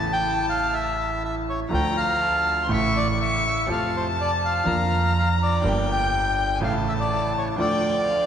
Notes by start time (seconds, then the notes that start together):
Already playing: A1 A2 C#3 E3 A3 E4 A5
0.13 G5
0.50 F5
0.74 E5
1.25 E5
1.49 C#5
1.70 D2 D3 F3 A3 F4 G5 A#5
1.97 F5
2.14 A#5
2.21 A5
2.64 C#3 C6
2.68 A1 A2 E3 A3 E4 C#6
2.73 E5
2.97 D5
3.21 E5 C#6
3.47 E5
3.67 F2 C3 F3 A3 F4 A5
3.72 F5
3.97 C5
4.21 D5
4.45 F5
4.64 F2 D3 F3 A#3 A#5
4.68 F4
5.19 F5
5.43 D5
5.62 G1 G2 D3 G3 A#3 G5
5.66 G4
5.92 G5
6.55 G#5
6.60 A1 A2 C#3 E3 A3 E4 A5
6.64 F5
6.89 E5
7.00 D5
7.38 C#5
7.56 D2 D3 F3 A3 F4 G5
7.60 D5
8.07 F5